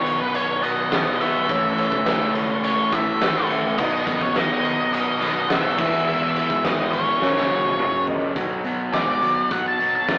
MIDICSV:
0, 0, Header, 1, 8, 480
1, 0, Start_track
1, 0, Key_signature, 5, "major"
1, 0, Tempo, 573066
1, 1251, Time_signature, 4, 2, 24, 8
1, 8528, End_track
2, 0, Start_track
2, 0, Title_t, "Lead electric guitar"
2, 0, Program_c, 0, 29
2, 0, Note_on_c, 0, 73, 89
2, 171, Note_off_c, 0, 73, 0
2, 174, Note_on_c, 0, 71, 88
2, 291, Note_off_c, 0, 71, 0
2, 291, Note_on_c, 0, 73, 97
2, 528, Note_on_c, 0, 75, 101
2, 532, Note_off_c, 0, 73, 0
2, 976, Note_off_c, 0, 75, 0
2, 1012, Note_on_c, 0, 76, 104
2, 1937, Note_off_c, 0, 76, 0
2, 2215, Note_on_c, 0, 73, 98
2, 2453, Note_on_c, 0, 76, 101
2, 2459, Note_off_c, 0, 73, 0
2, 2897, Note_off_c, 0, 76, 0
2, 3166, Note_on_c, 0, 75, 102
2, 3537, Note_off_c, 0, 75, 0
2, 3541, Note_on_c, 0, 73, 85
2, 3656, Note_off_c, 0, 73, 0
2, 3656, Note_on_c, 0, 75, 109
2, 4123, Note_off_c, 0, 75, 0
2, 4133, Note_on_c, 0, 75, 105
2, 4604, Note_off_c, 0, 75, 0
2, 4607, Note_on_c, 0, 76, 99
2, 5053, Note_off_c, 0, 76, 0
2, 5089, Note_on_c, 0, 76, 109
2, 5569, Note_off_c, 0, 76, 0
2, 5573, Note_on_c, 0, 75, 95
2, 5805, Note_off_c, 0, 75, 0
2, 5808, Note_on_c, 0, 73, 82
2, 6734, Note_off_c, 0, 73, 0
2, 7484, Note_on_c, 0, 74, 86
2, 7953, Note_off_c, 0, 74, 0
2, 7972, Note_on_c, 0, 78, 83
2, 8087, Note_off_c, 0, 78, 0
2, 8106, Note_on_c, 0, 81, 72
2, 8329, Note_off_c, 0, 81, 0
2, 8339, Note_on_c, 0, 81, 74
2, 8528, Note_off_c, 0, 81, 0
2, 8528, End_track
3, 0, Start_track
3, 0, Title_t, "Reed electric piano"
3, 0, Program_c, 1, 4
3, 0, Note_on_c, 1, 63, 70
3, 0, Note_on_c, 1, 66, 67
3, 0, Note_on_c, 1, 71, 59
3, 0, Note_on_c, 1, 75, 76
3, 340, Note_off_c, 1, 63, 0
3, 341, Note_off_c, 1, 66, 0
3, 341, Note_off_c, 1, 75, 0
3, 342, Note_off_c, 1, 71, 0
3, 1012, Note_on_c, 1, 63, 68
3, 1017, Note_on_c, 1, 71, 60
3, 1018, Note_on_c, 1, 66, 61
3, 1020, Note_on_c, 1, 78, 73
3, 1203, Note_off_c, 1, 63, 0
3, 1206, Note_off_c, 1, 66, 0
3, 1206, Note_off_c, 1, 71, 0
3, 1207, Note_off_c, 1, 78, 0
3, 1249, Note_on_c, 1, 64, 74
3, 1251, Note_on_c, 1, 69, 69
3, 1251, Note_on_c, 1, 71, 69
3, 1253, Note_on_c, 1, 73, 82
3, 1441, Note_off_c, 1, 64, 0
3, 1443, Note_off_c, 1, 69, 0
3, 1443, Note_off_c, 1, 71, 0
3, 1444, Note_off_c, 1, 73, 0
3, 1494, Note_on_c, 1, 64, 71
3, 1494, Note_on_c, 1, 69, 59
3, 1497, Note_on_c, 1, 71, 61
3, 1500, Note_on_c, 1, 73, 75
3, 2259, Note_off_c, 1, 64, 0
3, 2259, Note_off_c, 1, 69, 0
3, 2261, Note_off_c, 1, 71, 0
3, 2262, Note_off_c, 1, 73, 0
3, 2937, Note_on_c, 1, 64, 75
3, 2940, Note_on_c, 1, 76, 77
3, 2941, Note_on_c, 1, 69, 60
3, 2941, Note_on_c, 1, 71, 67
3, 3124, Note_off_c, 1, 64, 0
3, 3126, Note_off_c, 1, 69, 0
3, 3126, Note_off_c, 1, 71, 0
3, 3126, Note_off_c, 1, 76, 0
3, 3174, Note_on_c, 1, 63, 81
3, 3175, Note_on_c, 1, 66, 62
3, 3178, Note_on_c, 1, 71, 67
3, 3179, Note_on_c, 1, 75, 85
3, 3363, Note_off_c, 1, 63, 0
3, 3363, Note_off_c, 1, 66, 0
3, 3365, Note_off_c, 1, 71, 0
3, 3365, Note_off_c, 1, 75, 0
3, 3417, Note_on_c, 1, 66, 61
3, 3417, Note_on_c, 1, 71, 63
3, 3418, Note_on_c, 1, 75, 80
3, 3419, Note_on_c, 1, 63, 71
3, 4179, Note_off_c, 1, 66, 0
3, 4179, Note_off_c, 1, 71, 0
3, 4180, Note_off_c, 1, 63, 0
3, 4180, Note_off_c, 1, 75, 0
3, 4843, Note_on_c, 1, 64, 74
3, 4848, Note_on_c, 1, 68, 67
3, 4849, Note_on_c, 1, 71, 71
3, 4851, Note_on_c, 1, 76, 92
3, 5228, Note_off_c, 1, 64, 0
3, 5231, Note_off_c, 1, 68, 0
3, 5231, Note_off_c, 1, 71, 0
3, 5232, Note_off_c, 1, 76, 0
3, 5333, Note_on_c, 1, 64, 70
3, 5334, Note_on_c, 1, 68, 57
3, 5334, Note_on_c, 1, 71, 59
3, 5338, Note_on_c, 1, 76, 81
3, 6046, Note_on_c, 1, 61, 70
3, 6046, Note_on_c, 1, 66, 74
3, 6049, Note_off_c, 1, 64, 0
3, 6050, Note_off_c, 1, 68, 0
3, 6050, Note_off_c, 1, 71, 0
3, 6052, Note_off_c, 1, 76, 0
3, 6052, Note_on_c, 1, 70, 63
3, 6052, Note_on_c, 1, 73, 81
3, 6622, Note_off_c, 1, 61, 0
3, 6622, Note_off_c, 1, 66, 0
3, 6625, Note_off_c, 1, 70, 0
3, 6625, Note_off_c, 1, 73, 0
3, 6773, Note_on_c, 1, 61, 84
3, 6775, Note_on_c, 1, 66, 77
3, 6775, Note_on_c, 1, 70, 75
3, 6780, Note_on_c, 1, 75, 89
3, 6962, Note_off_c, 1, 61, 0
3, 6963, Note_off_c, 1, 66, 0
3, 6963, Note_off_c, 1, 70, 0
3, 6965, Note_off_c, 1, 75, 0
3, 8528, End_track
4, 0, Start_track
4, 0, Title_t, "Tonewheel organ"
4, 0, Program_c, 2, 16
4, 0, Note_on_c, 2, 63, 71
4, 0, Note_on_c, 2, 66, 75
4, 0, Note_on_c, 2, 71, 73
4, 1236, Note_off_c, 2, 71, 0
4, 1237, Note_off_c, 2, 63, 0
4, 1237, Note_off_c, 2, 66, 0
4, 1248, Note_on_c, 2, 61, 76
4, 1250, Note_on_c, 2, 71, 67
4, 1257, Note_on_c, 2, 69, 72
4, 3147, Note_off_c, 2, 61, 0
4, 3148, Note_off_c, 2, 71, 0
4, 3152, Note_off_c, 2, 69, 0
4, 3180, Note_on_c, 2, 71, 80
4, 3183, Note_on_c, 2, 66, 78
4, 3185, Note_on_c, 2, 63, 78
4, 4835, Note_off_c, 2, 71, 0
4, 4836, Note_off_c, 2, 66, 0
4, 4837, Note_off_c, 2, 63, 0
4, 4847, Note_on_c, 2, 71, 71
4, 4850, Note_on_c, 2, 68, 72
4, 4855, Note_on_c, 2, 64, 69
4, 6034, Note_off_c, 2, 71, 0
4, 6035, Note_off_c, 2, 68, 0
4, 6038, Note_off_c, 2, 64, 0
4, 6059, Note_on_c, 2, 70, 78
4, 6062, Note_on_c, 2, 61, 66
4, 6064, Note_on_c, 2, 66, 72
4, 6727, Note_on_c, 2, 59, 59
4, 6752, Note_on_c, 2, 60, 55
4, 6777, Note_on_c, 2, 62, 61
4, 6798, Note_on_c, 2, 64, 60
4, 6822, Note_on_c, 2, 65, 62
4, 6845, Note_on_c, 2, 67, 58
4, 6867, Note_on_c, 2, 69, 61
4, 6894, Note_on_c, 2, 71, 63
4, 6919, Note_on_c, 2, 72, 59
4, 6924, Note_off_c, 2, 59, 0
4, 6934, Note_on_c, 2, 74, 60
4, 6937, Note_off_c, 2, 60, 0
4, 6949, Note_off_c, 2, 62, 0
4, 6960, Note_off_c, 2, 64, 0
4, 6960, Note_on_c, 2, 76, 57
4, 6972, Note_off_c, 2, 65, 0
4, 6984, Note_off_c, 2, 67, 0
4, 6985, Note_on_c, 2, 77, 59
4, 6995, Note_off_c, 2, 69, 0
4, 6998, Note_off_c, 2, 66, 0
4, 7002, Note_off_c, 2, 71, 0
4, 7004, Note_off_c, 2, 70, 0
4, 7005, Note_off_c, 2, 61, 0
4, 7008, Note_on_c, 2, 66, 66
4, 7010, Note_on_c, 2, 63, 65
4, 7012, Note_on_c, 2, 71, 69
4, 7020, Note_off_c, 2, 72, 0
4, 7028, Note_off_c, 2, 74, 0
4, 7041, Note_off_c, 2, 76, 0
4, 7053, Note_off_c, 2, 77, 0
4, 8528, Note_off_c, 2, 63, 0
4, 8528, Note_off_c, 2, 66, 0
4, 8528, Note_off_c, 2, 71, 0
4, 8528, End_track
5, 0, Start_track
5, 0, Title_t, "Distorted electric guitar"
5, 0, Program_c, 3, 30
5, 0, Note_on_c, 3, 47, 80
5, 0, Note_on_c, 3, 51, 81
5, 0, Note_on_c, 3, 54, 103
5, 0, Note_on_c, 3, 59, 96
5, 0, Note_on_c, 3, 63, 88
5, 993, Note_off_c, 3, 47, 0
5, 996, Note_off_c, 3, 51, 0
5, 997, Note_off_c, 3, 63, 0
5, 1000, Note_off_c, 3, 54, 0
5, 1007, Note_on_c, 3, 63, 87
5, 1008, Note_off_c, 3, 59, 0
5, 1012, Note_on_c, 3, 59, 86
5, 1019, Note_on_c, 3, 54, 83
5, 1022, Note_on_c, 3, 51, 76
5, 1027, Note_on_c, 3, 47, 72
5, 1235, Note_off_c, 3, 63, 0
5, 1240, Note_off_c, 3, 54, 0
5, 1242, Note_off_c, 3, 47, 0
5, 1242, Note_off_c, 3, 51, 0
5, 1245, Note_on_c, 3, 45, 81
5, 1252, Note_on_c, 3, 52, 85
5, 1254, Note_on_c, 3, 57, 97
5, 1257, Note_off_c, 3, 59, 0
5, 1260, Note_on_c, 3, 61, 89
5, 1262, Note_on_c, 3, 64, 80
5, 2911, Note_off_c, 3, 45, 0
5, 2914, Note_off_c, 3, 52, 0
5, 2914, Note_off_c, 3, 64, 0
5, 2915, Note_off_c, 3, 57, 0
5, 2918, Note_off_c, 3, 61, 0
5, 2924, Note_on_c, 3, 64, 85
5, 2932, Note_on_c, 3, 61, 85
5, 2938, Note_on_c, 3, 57, 85
5, 2942, Note_on_c, 3, 52, 64
5, 2948, Note_on_c, 3, 45, 79
5, 3151, Note_off_c, 3, 64, 0
5, 3155, Note_off_c, 3, 61, 0
5, 3156, Note_off_c, 3, 45, 0
5, 3158, Note_off_c, 3, 57, 0
5, 3160, Note_off_c, 3, 52, 0
5, 3160, Note_on_c, 3, 47, 88
5, 3167, Note_on_c, 3, 51, 94
5, 3171, Note_on_c, 3, 54, 93
5, 3173, Note_on_c, 3, 59, 104
5, 3183, Note_on_c, 3, 63, 106
5, 4827, Note_off_c, 3, 47, 0
5, 4831, Note_off_c, 3, 51, 0
5, 4833, Note_off_c, 3, 54, 0
5, 4834, Note_off_c, 3, 59, 0
5, 4838, Note_on_c, 3, 52, 89
5, 4839, Note_off_c, 3, 63, 0
5, 4847, Note_on_c, 3, 56, 97
5, 4855, Note_on_c, 3, 59, 100
5, 4859, Note_on_c, 3, 64, 101
5, 6027, Note_off_c, 3, 52, 0
5, 6031, Note_off_c, 3, 56, 0
5, 6034, Note_on_c, 3, 42, 87
5, 6036, Note_off_c, 3, 59, 0
5, 6038, Note_off_c, 3, 64, 0
5, 6041, Note_on_c, 3, 49, 93
5, 6046, Note_on_c, 3, 54, 93
5, 6052, Note_on_c, 3, 58, 87
5, 6057, Note_on_c, 3, 61, 100
5, 6986, Note_off_c, 3, 42, 0
5, 6990, Note_off_c, 3, 49, 0
5, 6993, Note_off_c, 3, 54, 0
5, 6995, Note_off_c, 3, 58, 0
5, 6998, Note_off_c, 3, 61, 0
5, 7008, Note_on_c, 3, 47, 74
5, 7009, Note_on_c, 3, 54, 77
5, 7224, Note_off_c, 3, 47, 0
5, 7224, Note_off_c, 3, 54, 0
5, 7247, Note_on_c, 3, 47, 69
5, 7249, Note_on_c, 3, 54, 76
5, 7464, Note_off_c, 3, 47, 0
5, 7464, Note_off_c, 3, 54, 0
5, 7486, Note_on_c, 3, 47, 69
5, 7487, Note_on_c, 3, 56, 92
5, 7703, Note_off_c, 3, 47, 0
5, 7704, Note_off_c, 3, 56, 0
5, 7720, Note_on_c, 3, 47, 63
5, 7725, Note_on_c, 3, 54, 72
5, 7941, Note_off_c, 3, 47, 0
5, 7943, Note_off_c, 3, 54, 0
5, 7963, Note_on_c, 3, 47, 76
5, 7968, Note_on_c, 3, 54, 91
5, 8183, Note_off_c, 3, 47, 0
5, 8185, Note_off_c, 3, 54, 0
5, 8210, Note_on_c, 3, 47, 77
5, 8215, Note_on_c, 3, 54, 85
5, 8427, Note_off_c, 3, 47, 0
5, 8429, Note_off_c, 3, 54, 0
5, 8448, Note_on_c, 3, 47, 76
5, 8454, Note_on_c, 3, 54, 86
5, 8528, Note_off_c, 3, 47, 0
5, 8528, Note_off_c, 3, 54, 0
5, 8528, End_track
6, 0, Start_track
6, 0, Title_t, "Overdriven electric guitar"
6, 0, Program_c, 4, 29
6, 516, Note_on_c, 4, 59, 95
6, 526, Note_on_c, 4, 54, 92
6, 536, Note_on_c, 4, 47, 74
6, 746, Note_off_c, 4, 47, 0
6, 755, Note_off_c, 4, 54, 0
6, 756, Note_on_c, 4, 47, 76
6, 768, Note_on_c, 4, 54, 75
6, 771, Note_off_c, 4, 59, 0
6, 774, Note_on_c, 4, 59, 88
6, 1229, Note_off_c, 4, 47, 0
6, 1235, Note_off_c, 4, 54, 0
6, 1254, Note_off_c, 4, 59, 0
6, 2444, Note_on_c, 4, 57, 88
6, 2454, Note_on_c, 4, 52, 85
6, 2461, Note_on_c, 4, 45, 74
6, 2672, Note_off_c, 4, 57, 0
6, 2673, Note_off_c, 4, 45, 0
6, 2676, Note_off_c, 4, 52, 0
6, 2683, Note_on_c, 4, 45, 89
6, 2691, Note_on_c, 4, 52, 87
6, 2698, Note_on_c, 4, 57, 99
6, 3151, Note_off_c, 4, 45, 0
6, 3155, Note_off_c, 4, 52, 0
6, 3158, Note_off_c, 4, 57, 0
6, 4357, Note_on_c, 4, 59, 101
6, 4365, Note_on_c, 4, 54, 84
6, 4374, Note_on_c, 4, 47, 89
6, 4583, Note_off_c, 4, 47, 0
6, 4587, Note_off_c, 4, 59, 0
6, 4591, Note_off_c, 4, 54, 0
6, 4593, Note_on_c, 4, 47, 89
6, 4606, Note_on_c, 4, 54, 79
6, 4613, Note_on_c, 4, 59, 89
6, 4825, Note_off_c, 4, 47, 0
6, 4831, Note_off_c, 4, 54, 0
6, 4835, Note_off_c, 4, 59, 0
6, 4837, Note_on_c, 4, 40, 91
6, 4849, Note_on_c, 4, 47, 104
6, 6027, Note_off_c, 4, 40, 0
6, 6033, Note_off_c, 4, 47, 0
6, 8528, End_track
7, 0, Start_track
7, 0, Title_t, "Fingered electric bass"
7, 0, Program_c, 5, 33
7, 1251, Note_on_c, 5, 33, 97
7, 1556, Note_off_c, 5, 33, 0
7, 1609, Note_on_c, 5, 37, 89
7, 2321, Note_off_c, 5, 37, 0
7, 2449, Note_on_c, 5, 45, 85
7, 3059, Note_off_c, 5, 45, 0
7, 3172, Note_on_c, 5, 35, 105
7, 3373, Note_off_c, 5, 35, 0
7, 3408, Note_on_c, 5, 42, 89
7, 3531, Note_on_c, 5, 32, 92
7, 3543, Note_off_c, 5, 42, 0
7, 3733, Note_off_c, 5, 32, 0
7, 4848, Note_on_c, 5, 40, 91
7, 5356, Note_off_c, 5, 40, 0
7, 5446, Note_on_c, 5, 44, 93
7, 5954, Note_off_c, 5, 44, 0
7, 6041, Note_on_c, 5, 42, 108
7, 6247, Note_off_c, 5, 42, 0
7, 6284, Note_on_c, 5, 54, 89
7, 6896, Note_off_c, 5, 54, 0
7, 7001, Note_on_c, 5, 47, 96
7, 7411, Note_off_c, 5, 47, 0
7, 7485, Note_on_c, 5, 47, 85
7, 7894, Note_off_c, 5, 47, 0
7, 7965, Note_on_c, 5, 47, 96
7, 8376, Note_off_c, 5, 47, 0
7, 8449, Note_on_c, 5, 47, 82
7, 8528, Note_off_c, 5, 47, 0
7, 8528, End_track
8, 0, Start_track
8, 0, Title_t, "Drums"
8, 52, Note_on_c, 9, 51, 72
8, 136, Note_off_c, 9, 51, 0
8, 289, Note_on_c, 9, 51, 95
8, 373, Note_off_c, 9, 51, 0
8, 533, Note_on_c, 9, 51, 68
8, 616, Note_off_c, 9, 51, 0
8, 770, Note_on_c, 9, 51, 111
8, 771, Note_on_c, 9, 38, 126
8, 854, Note_off_c, 9, 51, 0
8, 855, Note_off_c, 9, 38, 0
8, 1012, Note_on_c, 9, 51, 73
8, 1096, Note_off_c, 9, 51, 0
8, 1250, Note_on_c, 9, 36, 116
8, 1253, Note_on_c, 9, 51, 103
8, 1334, Note_off_c, 9, 36, 0
8, 1336, Note_off_c, 9, 51, 0
8, 1493, Note_on_c, 9, 51, 85
8, 1577, Note_off_c, 9, 51, 0
8, 1609, Note_on_c, 9, 36, 91
8, 1692, Note_off_c, 9, 36, 0
8, 1727, Note_on_c, 9, 51, 99
8, 1728, Note_on_c, 9, 38, 109
8, 1811, Note_off_c, 9, 51, 0
8, 1812, Note_off_c, 9, 38, 0
8, 1970, Note_on_c, 9, 51, 75
8, 2054, Note_off_c, 9, 51, 0
8, 2208, Note_on_c, 9, 51, 101
8, 2292, Note_off_c, 9, 51, 0
8, 2449, Note_on_c, 9, 36, 92
8, 2450, Note_on_c, 9, 51, 74
8, 2451, Note_on_c, 9, 38, 36
8, 2533, Note_off_c, 9, 36, 0
8, 2534, Note_off_c, 9, 51, 0
8, 2535, Note_off_c, 9, 38, 0
8, 2693, Note_on_c, 9, 38, 119
8, 2693, Note_on_c, 9, 51, 123
8, 2776, Note_off_c, 9, 51, 0
8, 2777, Note_off_c, 9, 38, 0
8, 2934, Note_on_c, 9, 51, 79
8, 3018, Note_off_c, 9, 51, 0
8, 3170, Note_on_c, 9, 36, 119
8, 3171, Note_on_c, 9, 49, 104
8, 3254, Note_off_c, 9, 36, 0
8, 3255, Note_off_c, 9, 49, 0
8, 3409, Note_on_c, 9, 36, 96
8, 3411, Note_on_c, 9, 51, 86
8, 3493, Note_off_c, 9, 36, 0
8, 3495, Note_off_c, 9, 51, 0
8, 3529, Note_on_c, 9, 36, 93
8, 3613, Note_off_c, 9, 36, 0
8, 3651, Note_on_c, 9, 51, 97
8, 3652, Note_on_c, 9, 38, 104
8, 3735, Note_off_c, 9, 51, 0
8, 3736, Note_off_c, 9, 38, 0
8, 3892, Note_on_c, 9, 51, 75
8, 3976, Note_off_c, 9, 51, 0
8, 4134, Note_on_c, 9, 51, 111
8, 4218, Note_off_c, 9, 51, 0
8, 4371, Note_on_c, 9, 51, 75
8, 4372, Note_on_c, 9, 38, 36
8, 4454, Note_off_c, 9, 51, 0
8, 4455, Note_off_c, 9, 38, 0
8, 4608, Note_on_c, 9, 51, 107
8, 4609, Note_on_c, 9, 38, 121
8, 4692, Note_off_c, 9, 51, 0
8, 4693, Note_off_c, 9, 38, 0
8, 4846, Note_on_c, 9, 36, 120
8, 4846, Note_on_c, 9, 57, 99
8, 4929, Note_off_c, 9, 36, 0
8, 4930, Note_off_c, 9, 57, 0
8, 5326, Note_on_c, 9, 51, 76
8, 5410, Note_off_c, 9, 51, 0
8, 5444, Note_on_c, 9, 36, 81
8, 5528, Note_off_c, 9, 36, 0
8, 5566, Note_on_c, 9, 51, 99
8, 5567, Note_on_c, 9, 38, 104
8, 5650, Note_off_c, 9, 51, 0
8, 5651, Note_off_c, 9, 38, 0
8, 5805, Note_on_c, 9, 51, 72
8, 5888, Note_off_c, 9, 51, 0
8, 6047, Note_on_c, 9, 38, 65
8, 6131, Note_off_c, 9, 38, 0
8, 6166, Note_on_c, 9, 38, 58
8, 6250, Note_off_c, 9, 38, 0
8, 6407, Note_on_c, 9, 48, 78
8, 6491, Note_off_c, 9, 48, 0
8, 6527, Note_on_c, 9, 47, 94
8, 6611, Note_off_c, 9, 47, 0
8, 6761, Note_on_c, 9, 43, 100
8, 6845, Note_off_c, 9, 43, 0
8, 6881, Note_on_c, 9, 43, 86
8, 6965, Note_off_c, 9, 43, 0
8, 7003, Note_on_c, 9, 36, 110
8, 7004, Note_on_c, 9, 42, 81
8, 7086, Note_off_c, 9, 36, 0
8, 7088, Note_off_c, 9, 42, 0
8, 7242, Note_on_c, 9, 42, 70
8, 7326, Note_off_c, 9, 42, 0
8, 7484, Note_on_c, 9, 36, 88
8, 7484, Note_on_c, 9, 42, 73
8, 7485, Note_on_c, 9, 38, 100
8, 7568, Note_off_c, 9, 36, 0
8, 7568, Note_off_c, 9, 42, 0
8, 7569, Note_off_c, 9, 38, 0
8, 7726, Note_on_c, 9, 42, 67
8, 7810, Note_off_c, 9, 42, 0
8, 7966, Note_on_c, 9, 36, 112
8, 7970, Note_on_c, 9, 42, 84
8, 8050, Note_off_c, 9, 36, 0
8, 8054, Note_off_c, 9, 42, 0
8, 8211, Note_on_c, 9, 42, 67
8, 8295, Note_off_c, 9, 42, 0
8, 8447, Note_on_c, 9, 42, 90
8, 8448, Note_on_c, 9, 36, 116
8, 8448, Note_on_c, 9, 38, 104
8, 8528, Note_off_c, 9, 36, 0
8, 8528, Note_off_c, 9, 38, 0
8, 8528, Note_off_c, 9, 42, 0
8, 8528, End_track
0, 0, End_of_file